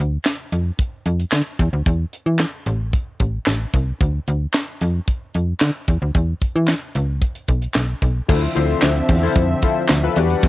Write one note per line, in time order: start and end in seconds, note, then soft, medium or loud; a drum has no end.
0.00 0.18 D2 loud
0.25 snare loud
0.25 clap medium
0.25 closed hi-hat medium
0.52 0.71 F2 medium
0.52 closed hi-hat medium
0.79 kick loud
0.79 closed hi-hat medium
1.06 1.25 F2 medium
1.06 closed hi-hat medium
1.20 closed hi-hat medium
1.32 1.42 D3 medium
1.32 snare loud
1.32 clap medium
1.32 closed hi-hat medium
1.59 1.69 E2 loud
1.59 kick medium
1.59 closed hi-hat medium
1.73 1.82 D2 medium
1.86 2.05 E2 loud
1.86 kick loud
1.86 closed hi-hat medium
2.13 closed hi-hat medium
2.26 2.45 E3 medium
2.39 snare loud
2.39 clap medium
2.39 closed hi-hat medium
2.66 2.95 A1 loud
2.66 closed hi-hat medium
2.93 kick loud
2.93 closed hi-hat medium
3.20 3.39 A1 medium
3.20 kick medium
3.20 closed hi-hat medium
3.46 3.66 A1 medium
3.46 snare loud
3.46 clap medium
3.46 closed hi-hat medium
3.74 3.93 C2 medium
3.74 kick medium
3.74 closed hi-hat medium
4.01 4.20 D2 loud
4.01 kick loud
4.01 closed hi-hat medium
4.28 4.47 D2 loud
4.28 closed hi-hat medium
4.54 snare loud
4.54 clap medium
4.54 closed hi-hat medium
4.81 5.00 F2 loud
4.81 closed hi-hat medium
5.08 kick loud
5.08 closed hi-hat medium
5.34 5.54 F2 medium
5.34 closed hi-hat medium
5.61 5.71 D3 loud
5.61 snare loud
5.61 clap medium
5.61 closed hi-hat medium
5.88 5.98 E2 medium
5.88 kick medium
5.88 closed hi-hat medium
6.02 6.11 D2 medium
6.15 6.34 E2 loud
6.15 kick loud
6.15 closed hi-hat medium
6.42 kick medium
6.42 closed hi-hat medium
6.56 6.74 E3 loud
6.68 snare loud
6.68 clap medium
6.68 closed hi-hat medium
6.95 7.24 C#2 loud
6.95 closed hi-hat medium
7.22 kick loud
7.22 closed hi-hat medium
7.35 closed hi-hat medium
7.48 7.68 B1 medium
7.48 kick medium
7.48 closed hi-hat medium
7.62 closed hi-hat medium
7.74 7.95 B1 medium
7.74 snare loud
7.74 clap medium
7.74 closed hi-hat medium
8.02 8.21 B1 medium
8.02 kick medium
8.02 closed hi-hat medium
8.28 8.48 D2 loud
8.28 10.15 F3 medium
8.28 8.42 E4 medium
8.28 8.42 F4 medium
8.28 8.42 A4 medium
8.28 8.42 C5 loud
8.28 10.15 E5 loud
8.28 kick loud
8.28 crash loud
8.55 8.75 D2 medium
8.55 8.89 E4 medium
8.55 8.89 F4 medium
8.55 8.89 A4 medium
8.55 8.89 C5 loud
8.55 closed hi-hat medium
8.82 9.02 D2 medium
8.82 snare loud
8.82 clap medium
8.82 closed hi-hat loud
8.96 closed hi-hat medium
9.09 9.28 E2 loud
9.09 kick loud
9.09 open hi-hat medium
9.23 9.43 E4 medium
9.23 9.43 F4 medium
9.23 9.43 A4 medium
9.23 9.43 C5 loud
9.35 9.55 F2 medium
9.35 kick loud
9.35 closed hi-hat loud
9.62 9.83 E4 medium
9.62 9.83 F4 medium
9.62 9.83 A4 medium
9.62 9.83 C5 loud
9.62 kick loud
9.62 closed hi-hat medium
9.89 10.09 D2 loud
9.89 snare loud
9.89 clap loud
9.89 closed hi-hat loud
10.03 10.17 E4 medium
10.03 10.17 F4 medium
10.03 10.17 A4 medium
10.03 10.16 B4 loud
10.16 10.36 E2 loud
10.16 10.48 E3 medium
10.16 10.48 G3 medium
10.16 10.48 D4 loud
10.16 10.48 D4 medium
10.16 10.48 F#4 medium
10.16 10.48 G4 medium
10.16 10.48 B4 loud
10.16 10.48 F#5 medium
10.16 closed hi-hat medium
10.30 closed hi-hat medium
10.43 10.48 E2 loud
10.43 kick loud
10.43 closed hi-hat medium